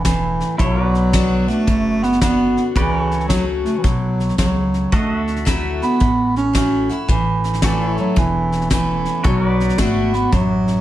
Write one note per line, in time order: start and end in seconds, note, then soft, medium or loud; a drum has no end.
0.00 0.39 E1 medium
0.00 0.55 E3 medium
0.00 0.57 E4 medium
0.00 0.58 A4 medium
0.00 0.58 C#5 medium
0.05 0.57 A2 medium
0.05 kick medium
0.05 snare loud
0.05 hi-hat pedal medium
0.40 snare soft
0.58 1.47 B1 medium
0.58 1.64 B2 medium
0.58 1.49 F#3 medium
0.58 0.83 E4 medium
0.58 0.85 A4 medium
0.58 0.81 C#5 medium
0.58 kick loud
0.58 snare soft
0.81 2.73 F#4 medium
0.81 2.74 D5 medium
0.85 2.74 B4 medium
0.95 snare soft
1.13 1.47 D3 medium
1.13 1.47 B3 medium
1.13 1.48 D4 medium
1.13 1.47 F#4 medium
1.13 kick medium
1.13 snare medium
1.13 hi-hat pedal medium
1.48 2.05 A3 medium
1.48 1.67 D4 soft
1.48 1.67 F#4 medium
1.48 snare soft
1.67 2.55 F#1 medium
1.67 2.72 F#2 medium
1.67 kick loud
1.67 snare soft
2.03 2.21 B3 loud
2.03 snare soft
2.12 snare soft
2.21 2.74 D3 soft
2.21 2.63 B3 loud
2.21 2.75 B3 medium
2.21 2.75 D4 medium
2.21 2.75 F#4 medium
2.21 kick medium
2.21 snare loud
2.21 hi-hat pedal medium
2.57 snare soft
2.74 3.64 C#2 medium
2.74 3.81 C#3 medium
2.74 3.25 E3 medium
2.74 4.91 F#4 medium
2.74 3.02 B4 medium
2.74 kick loud
2.74 snare soft
2.78 2.98 D5 medium
2.98 4.91 A4 medium
2.98 4.91 C#5 medium
3.11 snare soft
3.21 snare soft
3.28 3.44 F#3 medium
3.28 3.82 F#3 medium
3.28 3.82 A3 medium
3.28 3.83 C#4 medium
3.28 3.83 F#4 medium
3.28 kick medium
3.28 snare loud
3.28 hi-hat pedal medium
3.65 3.79 A3 medium
3.65 snare soft
3.78 3.84 E3 medium
3.83 4.30 B1 medium
3.83 4.36 B2 medium
3.83 4.37 F#3 medium
3.83 kick loud
3.83 snare soft
4.20 snare soft
4.29 snare soft
4.38 4.84 C#2 medium
4.38 4.90 C#3 medium
4.38 4.95 F#3 medium
4.38 kick medium
4.38 snare loud
4.38 hi-hat pedal medium
4.74 snare soft
4.92 5.80 D2 medium
4.92 5.97 D3 medium
4.92 5.47 A3 medium
4.92 7.07 F#4 medium
4.92 7.07 A4 medium
4.92 5.16 D#5 medium
4.92 kick loud
4.92 snare soft
5.16 7.08 E5 medium
5.27 snare soft
5.36 snare soft
5.45 5.98 F#3 medium
5.45 5.98 A3 medium
5.45 5.99 E4 medium
5.45 5.99 F#4 medium
5.45 kick medium
5.45 snare loud
5.45 hi-hat pedal medium
5.82 6.33 B3 medium
5.82 snare soft
6.00 6.88 A1 medium
6.00 7.05 A2 medium
6.00 kick loud
6.00 snare soft
6.36 6.54 C#4 medium
6.36 snare soft
6.53 6.88 F#3 soft
6.53 6.88 A3 medium
6.53 6.96 C#4 loud
6.53 6.89 E4 medium
6.53 6.88 F#4 soft
6.53 kick medium
6.53 snare loud
6.53 hi-hat pedal medium
6.89 7.08 E4 soft
6.89 7.08 F#4 soft
6.89 snare soft
7.08 7.96 A1 medium
7.08 8.13 A2 medium
7.08 7.59 E3 medium
7.08 kick loud
7.08 snare soft
7.44 snare soft
7.53 snare soft
7.62 8.14 E3 medium
7.62 7.96 E3 medium
7.62 8.15 A3 medium
7.62 8.15 C#4 medium
7.62 8.15 E4 medium
7.62 7.89 F#4 medium
7.62 9.25 A4 medium
7.62 kick medium
7.62 snare loud
7.62 hi-hat pedal medium
7.67 7.87 D5 medium
7.87 9.24 E4 medium
7.87 9.23 C#5 medium
7.98 8.20 F#3 medium
7.98 snare soft
8.16 9.04 E1 medium
8.16 9.21 E2 medium
8.16 8.70 E3 medium
8.16 kick loud
8.16 snare soft
8.52 snare soft
8.61 snare soft
8.70 9.22 E3 soft
8.70 9.27 E3 medium
8.70 9.23 A3 medium
8.70 9.23 C#4 medium
8.70 9.23 E4 medium
8.70 kick medium
8.70 snare loud
8.70 hi-hat pedal medium
9.05 snare soft
9.24 9.69 B1 medium
9.24 10.29 B2 medium
9.24 9.80 F#3 medium
9.24 10.81 F#4 medium
9.24 9.50 A4 medium
9.24 9.46 C#5 medium
9.24 kick loud
9.24 snare soft
9.46 10.81 B4 medium
9.46 10.81 D5 medium
9.60 snare soft
9.69 snare soft
9.78 10.24 G#1 medium
9.78 10.31 D3 medium
9.78 10.15 A3 medium
9.78 10.31 B3 medium
9.78 10.31 D4 medium
9.78 10.31 F#4 medium
9.78 kick medium
9.78 snare medium
9.78 hi-hat pedal medium
10.14 10.34 B3 medium
10.14 snare soft
10.32 10.79 A1 medium
10.32 10.81 F#2 medium
10.32 10.81 F#3 loud
10.32 kick loud
10.32 snare soft
10.68 snare soft